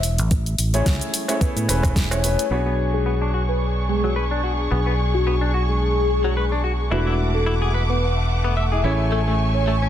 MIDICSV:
0, 0, Header, 1, 7, 480
1, 0, Start_track
1, 0, Tempo, 550459
1, 274, Time_signature, 4, 2, 24, 8
1, 8626, End_track
2, 0, Start_track
2, 0, Title_t, "Violin section"
2, 0, Program_c, 0, 48
2, 2188, Note_on_c, 0, 62, 64
2, 2188, Note_on_c, 0, 68, 68
2, 2188, Note_on_c, 0, 85, 78
2, 5996, Note_off_c, 0, 62, 0
2, 5996, Note_off_c, 0, 68, 0
2, 5996, Note_off_c, 0, 85, 0
2, 6031, Note_on_c, 0, 57, 71
2, 6033, Note_on_c, 0, 86, 78
2, 6035, Note_on_c, 0, 78, 66
2, 7697, Note_off_c, 0, 78, 0
2, 7697, Note_off_c, 0, 86, 0
2, 7712, Note_on_c, 0, 80, 64
2, 7712, Note_on_c, 0, 85, 77
2, 8626, Note_off_c, 0, 57, 0
2, 8626, Note_off_c, 0, 80, 0
2, 8626, Note_off_c, 0, 85, 0
2, 8626, End_track
3, 0, Start_track
3, 0, Title_t, "Soft synth lead"
3, 0, Program_c, 1, 80
3, 641, Note_on_c, 1, 73, 96
3, 781, Note_off_c, 1, 73, 0
3, 1231, Note_on_c, 1, 71, 90
3, 1317, Note_off_c, 1, 71, 0
3, 1359, Note_on_c, 1, 71, 75
3, 1432, Note_off_c, 1, 71, 0
3, 1836, Note_on_c, 1, 73, 91
3, 2189, Note_off_c, 1, 73, 0
3, 2560, Note_on_c, 1, 68, 87
3, 2701, Note_off_c, 1, 68, 0
3, 3040, Note_on_c, 1, 71, 84
3, 3181, Note_off_c, 1, 71, 0
3, 3389, Note_on_c, 1, 68, 90
3, 3548, Note_off_c, 1, 68, 0
3, 4483, Note_on_c, 1, 66, 86
3, 4554, Note_off_c, 1, 66, 0
3, 4586, Note_on_c, 1, 66, 74
3, 4675, Note_off_c, 1, 66, 0
3, 4959, Note_on_c, 1, 68, 92
3, 5629, Note_off_c, 1, 68, 0
3, 6404, Note_on_c, 1, 69, 88
3, 6543, Note_off_c, 1, 69, 0
3, 6883, Note_on_c, 1, 71, 87
3, 7022, Note_off_c, 1, 71, 0
3, 7609, Note_on_c, 1, 76, 88
3, 7745, Note_off_c, 1, 76, 0
3, 8322, Note_on_c, 1, 73, 88
3, 8462, Note_off_c, 1, 73, 0
3, 8626, End_track
4, 0, Start_track
4, 0, Title_t, "Grand piano"
4, 0, Program_c, 2, 0
4, 643, Note_on_c, 2, 57, 75
4, 647, Note_on_c, 2, 61, 67
4, 647, Note_on_c, 2, 64, 67
4, 650, Note_on_c, 2, 68, 69
4, 653, Note_on_c, 2, 73, 79
4, 1093, Note_off_c, 2, 57, 0
4, 1095, Note_off_c, 2, 61, 0
4, 1095, Note_off_c, 2, 64, 0
4, 1096, Note_off_c, 2, 68, 0
4, 1098, Note_off_c, 2, 73, 0
4, 1123, Note_on_c, 2, 57, 74
4, 1123, Note_on_c, 2, 61, 69
4, 1125, Note_on_c, 2, 64, 68
4, 1127, Note_on_c, 2, 68, 68
4, 1131, Note_on_c, 2, 73, 82
4, 1206, Note_off_c, 2, 57, 0
4, 1206, Note_off_c, 2, 61, 0
4, 1208, Note_off_c, 2, 64, 0
4, 1208, Note_off_c, 2, 68, 0
4, 1210, Note_off_c, 2, 73, 0
4, 1232, Note_on_c, 2, 57, 82
4, 1234, Note_on_c, 2, 64, 73
4, 1238, Note_on_c, 2, 68, 75
4, 1240, Note_on_c, 2, 73, 89
4, 1451, Note_off_c, 2, 57, 0
4, 1452, Note_off_c, 2, 64, 0
4, 1454, Note_off_c, 2, 68, 0
4, 1455, Note_off_c, 2, 73, 0
4, 1470, Note_on_c, 2, 57, 95
4, 1473, Note_on_c, 2, 61, 87
4, 1475, Note_on_c, 2, 64, 87
4, 1476, Note_on_c, 2, 68, 88
4, 1479, Note_on_c, 2, 71, 104
4, 1813, Note_off_c, 2, 57, 0
4, 1814, Note_off_c, 2, 61, 0
4, 1815, Note_off_c, 2, 64, 0
4, 1815, Note_off_c, 2, 68, 0
4, 1817, Note_off_c, 2, 71, 0
4, 1841, Note_on_c, 2, 57, 75
4, 1842, Note_on_c, 2, 61, 68
4, 1845, Note_on_c, 2, 64, 67
4, 1845, Note_on_c, 2, 68, 67
4, 1849, Note_on_c, 2, 73, 82
4, 1925, Note_off_c, 2, 57, 0
4, 1926, Note_off_c, 2, 61, 0
4, 1927, Note_off_c, 2, 64, 0
4, 1927, Note_off_c, 2, 68, 0
4, 1929, Note_off_c, 2, 73, 0
4, 1945, Note_on_c, 2, 57, 81
4, 1948, Note_on_c, 2, 61, 73
4, 1949, Note_on_c, 2, 64, 73
4, 1951, Note_on_c, 2, 68, 74
4, 1955, Note_on_c, 2, 71, 87
4, 2129, Note_off_c, 2, 57, 0
4, 2131, Note_off_c, 2, 61, 0
4, 2132, Note_off_c, 2, 64, 0
4, 2133, Note_off_c, 2, 68, 0
4, 2134, Note_off_c, 2, 71, 0
4, 2184, Note_on_c, 2, 59, 68
4, 2188, Note_on_c, 2, 62, 60
4, 2193, Note_on_c, 2, 66, 60
4, 2197, Note_on_c, 2, 68, 60
4, 2202, Note_on_c, 2, 73, 75
4, 6003, Note_off_c, 2, 59, 0
4, 6005, Note_off_c, 2, 62, 0
4, 6008, Note_off_c, 2, 66, 0
4, 6009, Note_off_c, 2, 68, 0
4, 6012, Note_off_c, 2, 73, 0
4, 6022, Note_on_c, 2, 57, 68
4, 6027, Note_on_c, 2, 62, 63
4, 6031, Note_on_c, 2, 64, 62
4, 6035, Note_on_c, 2, 66, 65
4, 6039, Note_on_c, 2, 71, 76
4, 7682, Note_off_c, 2, 57, 0
4, 7684, Note_off_c, 2, 62, 0
4, 7687, Note_off_c, 2, 64, 0
4, 7688, Note_off_c, 2, 66, 0
4, 7691, Note_off_c, 2, 71, 0
4, 7705, Note_on_c, 2, 57, 70
4, 7706, Note_on_c, 2, 61, 63
4, 7711, Note_on_c, 2, 64, 62
4, 7717, Note_on_c, 2, 68, 61
4, 7721, Note_on_c, 2, 73, 75
4, 8626, Note_off_c, 2, 57, 0
4, 8626, Note_off_c, 2, 61, 0
4, 8626, Note_off_c, 2, 64, 0
4, 8626, Note_off_c, 2, 68, 0
4, 8626, Note_off_c, 2, 73, 0
4, 8626, End_track
5, 0, Start_track
5, 0, Title_t, "Clean electric guitar"
5, 0, Program_c, 3, 27
5, 2193, Note_on_c, 3, 59, 86
5, 2260, Note_off_c, 3, 59, 0
5, 2321, Note_on_c, 3, 59, 66
5, 2377, Note_off_c, 3, 59, 0
5, 2668, Note_on_c, 3, 59, 70
5, 2737, Note_off_c, 3, 59, 0
5, 2804, Note_on_c, 3, 62, 67
5, 2886, Note_off_c, 3, 62, 0
5, 2912, Note_on_c, 3, 66, 66
5, 2979, Note_off_c, 3, 66, 0
5, 3523, Note_on_c, 3, 54, 66
5, 3605, Note_off_c, 3, 54, 0
5, 3628, Note_on_c, 3, 71, 76
5, 3697, Note_off_c, 3, 71, 0
5, 3760, Note_on_c, 3, 62, 67
5, 3844, Note_off_c, 3, 62, 0
5, 3868, Note_on_c, 3, 66, 66
5, 3937, Note_off_c, 3, 66, 0
5, 4111, Note_on_c, 3, 59, 87
5, 4179, Note_off_c, 3, 59, 0
5, 4240, Note_on_c, 3, 59, 69
5, 4297, Note_off_c, 3, 59, 0
5, 4594, Note_on_c, 3, 59, 73
5, 4660, Note_off_c, 3, 59, 0
5, 4721, Note_on_c, 3, 62, 66
5, 4804, Note_off_c, 3, 62, 0
5, 4831, Note_on_c, 3, 66, 68
5, 4899, Note_off_c, 3, 66, 0
5, 5445, Note_on_c, 3, 54, 66
5, 5526, Note_off_c, 3, 54, 0
5, 5554, Note_on_c, 3, 71, 74
5, 5620, Note_off_c, 3, 71, 0
5, 5684, Note_on_c, 3, 62, 66
5, 5766, Note_off_c, 3, 62, 0
5, 5789, Note_on_c, 3, 66, 68
5, 5857, Note_off_c, 3, 66, 0
5, 6030, Note_on_c, 3, 64, 87
5, 6098, Note_off_c, 3, 64, 0
5, 6161, Note_on_c, 3, 64, 66
5, 6218, Note_off_c, 3, 64, 0
5, 6509, Note_on_c, 3, 64, 73
5, 6577, Note_off_c, 3, 64, 0
5, 6642, Note_on_c, 3, 68, 67
5, 6725, Note_off_c, 3, 68, 0
5, 6752, Note_on_c, 3, 71, 67
5, 6819, Note_off_c, 3, 71, 0
5, 7363, Note_on_c, 3, 59, 66
5, 7445, Note_off_c, 3, 59, 0
5, 7472, Note_on_c, 3, 76, 76
5, 7539, Note_off_c, 3, 76, 0
5, 7603, Note_on_c, 3, 68, 66
5, 7685, Note_off_c, 3, 68, 0
5, 7709, Note_on_c, 3, 64, 67
5, 7778, Note_off_c, 3, 64, 0
5, 7952, Note_on_c, 3, 57, 86
5, 8019, Note_off_c, 3, 57, 0
5, 8088, Note_on_c, 3, 57, 68
5, 8141, Note_off_c, 3, 57, 0
5, 8438, Note_on_c, 3, 57, 73
5, 8502, Note_off_c, 3, 57, 0
5, 8566, Note_on_c, 3, 61, 66
5, 8626, Note_off_c, 3, 61, 0
5, 8626, End_track
6, 0, Start_track
6, 0, Title_t, "Fingered electric bass"
6, 0, Program_c, 4, 33
6, 0, Note_on_c, 4, 28, 76
6, 165, Note_off_c, 4, 28, 0
6, 165, Note_on_c, 4, 33, 93
6, 256, Note_off_c, 4, 33, 0
6, 272, Note_on_c, 4, 33, 98
6, 478, Note_off_c, 4, 33, 0
6, 510, Note_on_c, 4, 33, 77
6, 717, Note_off_c, 4, 33, 0
6, 1362, Note_on_c, 4, 45, 83
6, 1454, Note_off_c, 4, 45, 0
6, 1471, Note_on_c, 4, 28, 76
6, 2051, Note_off_c, 4, 28, 0
6, 2185, Note_on_c, 4, 35, 76
6, 4088, Note_off_c, 4, 35, 0
6, 4111, Note_on_c, 4, 35, 77
6, 6011, Note_off_c, 4, 35, 0
6, 6030, Note_on_c, 4, 28, 79
6, 7690, Note_off_c, 4, 28, 0
6, 7708, Note_on_c, 4, 33, 81
6, 8626, Note_off_c, 4, 33, 0
6, 8626, End_track
7, 0, Start_track
7, 0, Title_t, "Drums"
7, 29, Note_on_c, 9, 46, 84
7, 32, Note_on_c, 9, 82, 80
7, 116, Note_off_c, 9, 46, 0
7, 119, Note_off_c, 9, 82, 0
7, 161, Note_on_c, 9, 42, 55
7, 164, Note_on_c, 9, 82, 36
7, 248, Note_off_c, 9, 42, 0
7, 251, Note_off_c, 9, 82, 0
7, 270, Note_on_c, 9, 42, 54
7, 271, Note_on_c, 9, 36, 110
7, 273, Note_on_c, 9, 82, 44
7, 357, Note_off_c, 9, 42, 0
7, 359, Note_off_c, 9, 36, 0
7, 360, Note_off_c, 9, 82, 0
7, 404, Note_on_c, 9, 42, 26
7, 407, Note_on_c, 9, 82, 31
7, 491, Note_off_c, 9, 42, 0
7, 495, Note_off_c, 9, 82, 0
7, 510, Note_on_c, 9, 46, 95
7, 513, Note_on_c, 9, 82, 78
7, 597, Note_off_c, 9, 46, 0
7, 600, Note_off_c, 9, 82, 0
7, 643, Note_on_c, 9, 42, 54
7, 647, Note_on_c, 9, 82, 34
7, 731, Note_off_c, 9, 42, 0
7, 734, Note_off_c, 9, 82, 0
7, 750, Note_on_c, 9, 36, 112
7, 751, Note_on_c, 9, 42, 54
7, 753, Note_on_c, 9, 38, 117
7, 754, Note_on_c, 9, 82, 46
7, 838, Note_off_c, 9, 36, 0
7, 838, Note_off_c, 9, 42, 0
7, 841, Note_off_c, 9, 38, 0
7, 841, Note_off_c, 9, 82, 0
7, 884, Note_on_c, 9, 42, 26
7, 887, Note_on_c, 9, 82, 32
7, 971, Note_off_c, 9, 42, 0
7, 974, Note_off_c, 9, 82, 0
7, 991, Note_on_c, 9, 46, 85
7, 994, Note_on_c, 9, 82, 79
7, 1078, Note_off_c, 9, 46, 0
7, 1082, Note_off_c, 9, 82, 0
7, 1119, Note_on_c, 9, 56, 61
7, 1124, Note_on_c, 9, 42, 53
7, 1128, Note_on_c, 9, 82, 34
7, 1207, Note_off_c, 9, 56, 0
7, 1212, Note_off_c, 9, 42, 0
7, 1215, Note_off_c, 9, 82, 0
7, 1231, Note_on_c, 9, 36, 112
7, 1232, Note_on_c, 9, 42, 51
7, 1235, Note_on_c, 9, 82, 44
7, 1318, Note_off_c, 9, 36, 0
7, 1319, Note_off_c, 9, 42, 0
7, 1323, Note_off_c, 9, 82, 0
7, 1366, Note_on_c, 9, 42, 27
7, 1369, Note_on_c, 9, 82, 32
7, 1453, Note_off_c, 9, 42, 0
7, 1456, Note_off_c, 9, 82, 0
7, 1470, Note_on_c, 9, 56, 54
7, 1475, Note_on_c, 9, 46, 100
7, 1478, Note_on_c, 9, 82, 78
7, 1557, Note_off_c, 9, 56, 0
7, 1562, Note_off_c, 9, 46, 0
7, 1565, Note_off_c, 9, 82, 0
7, 1598, Note_on_c, 9, 56, 80
7, 1602, Note_on_c, 9, 36, 58
7, 1609, Note_on_c, 9, 42, 53
7, 1613, Note_on_c, 9, 82, 34
7, 1686, Note_off_c, 9, 56, 0
7, 1689, Note_off_c, 9, 36, 0
7, 1697, Note_off_c, 9, 42, 0
7, 1700, Note_off_c, 9, 82, 0
7, 1709, Note_on_c, 9, 36, 111
7, 1713, Note_on_c, 9, 42, 54
7, 1716, Note_on_c, 9, 38, 115
7, 1716, Note_on_c, 9, 82, 46
7, 1796, Note_off_c, 9, 36, 0
7, 1800, Note_off_c, 9, 42, 0
7, 1803, Note_off_c, 9, 38, 0
7, 1803, Note_off_c, 9, 82, 0
7, 1842, Note_on_c, 9, 56, 86
7, 1847, Note_on_c, 9, 42, 27
7, 1850, Note_on_c, 9, 82, 31
7, 1929, Note_off_c, 9, 56, 0
7, 1935, Note_off_c, 9, 42, 0
7, 1938, Note_off_c, 9, 82, 0
7, 1952, Note_on_c, 9, 46, 86
7, 1955, Note_on_c, 9, 82, 78
7, 2039, Note_off_c, 9, 46, 0
7, 2042, Note_off_c, 9, 82, 0
7, 2086, Note_on_c, 9, 42, 56
7, 2089, Note_on_c, 9, 82, 35
7, 2173, Note_off_c, 9, 42, 0
7, 2176, Note_off_c, 9, 82, 0
7, 2193, Note_on_c, 9, 42, 48
7, 2280, Note_off_c, 9, 42, 0
7, 2328, Note_on_c, 9, 42, 23
7, 2415, Note_off_c, 9, 42, 0
7, 2434, Note_on_c, 9, 42, 82
7, 2521, Note_off_c, 9, 42, 0
7, 2566, Note_on_c, 9, 42, 47
7, 2653, Note_off_c, 9, 42, 0
7, 2673, Note_on_c, 9, 42, 47
7, 2760, Note_off_c, 9, 42, 0
7, 2805, Note_on_c, 9, 42, 23
7, 2892, Note_off_c, 9, 42, 0
7, 2913, Note_on_c, 9, 42, 84
7, 3001, Note_off_c, 9, 42, 0
7, 3048, Note_on_c, 9, 42, 47
7, 3135, Note_off_c, 9, 42, 0
7, 3153, Note_on_c, 9, 42, 47
7, 3240, Note_off_c, 9, 42, 0
7, 3286, Note_on_c, 9, 42, 24
7, 3374, Note_off_c, 9, 42, 0
7, 3395, Note_on_c, 9, 42, 85
7, 3482, Note_off_c, 9, 42, 0
7, 3527, Note_on_c, 9, 42, 48
7, 3615, Note_off_c, 9, 42, 0
7, 3634, Note_on_c, 9, 42, 47
7, 3721, Note_off_c, 9, 42, 0
7, 3873, Note_on_c, 9, 42, 83
7, 3961, Note_off_c, 9, 42, 0
7, 4007, Note_on_c, 9, 42, 50
7, 4094, Note_off_c, 9, 42, 0
7, 4351, Note_on_c, 9, 42, 78
7, 4438, Note_off_c, 9, 42, 0
7, 4483, Note_on_c, 9, 42, 46
7, 4570, Note_off_c, 9, 42, 0
7, 4590, Note_on_c, 9, 42, 47
7, 4677, Note_off_c, 9, 42, 0
7, 4833, Note_on_c, 9, 42, 80
7, 4920, Note_off_c, 9, 42, 0
7, 4965, Note_on_c, 9, 42, 48
7, 5052, Note_off_c, 9, 42, 0
7, 5075, Note_on_c, 9, 42, 46
7, 5162, Note_off_c, 9, 42, 0
7, 5208, Note_on_c, 9, 42, 24
7, 5295, Note_off_c, 9, 42, 0
7, 5316, Note_on_c, 9, 42, 81
7, 5403, Note_off_c, 9, 42, 0
7, 5450, Note_on_c, 9, 42, 45
7, 5537, Note_off_c, 9, 42, 0
7, 5558, Note_on_c, 9, 42, 46
7, 5645, Note_off_c, 9, 42, 0
7, 5797, Note_on_c, 9, 42, 80
7, 5884, Note_off_c, 9, 42, 0
7, 5930, Note_on_c, 9, 42, 49
7, 6018, Note_off_c, 9, 42, 0
7, 6036, Note_on_c, 9, 42, 45
7, 6123, Note_off_c, 9, 42, 0
7, 6276, Note_on_c, 9, 42, 79
7, 6363, Note_off_c, 9, 42, 0
7, 6406, Note_on_c, 9, 42, 44
7, 6493, Note_off_c, 9, 42, 0
7, 6754, Note_on_c, 9, 42, 78
7, 6841, Note_off_c, 9, 42, 0
7, 6993, Note_on_c, 9, 42, 44
7, 7080, Note_off_c, 9, 42, 0
7, 7233, Note_on_c, 9, 42, 79
7, 7320, Note_off_c, 9, 42, 0
7, 7475, Note_on_c, 9, 42, 45
7, 7562, Note_off_c, 9, 42, 0
7, 7714, Note_on_c, 9, 42, 78
7, 7802, Note_off_c, 9, 42, 0
7, 7848, Note_on_c, 9, 42, 46
7, 7936, Note_off_c, 9, 42, 0
7, 8194, Note_on_c, 9, 42, 76
7, 8281, Note_off_c, 9, 42, 0
7, 8325, Note_on_c, 9, 42, 43
7, 8412, Note_off_c, 9, 42, 0
7, 8436, Note_on_c, 9, 42, 43
7, 8523, Note_off_c, 9, 42, 0
7, 8568, Note_on_c, 9, 42, 22
7, 8626, Note_off_c, 9, 42, 0
7, 8626, End_track
0, 0, End_of_file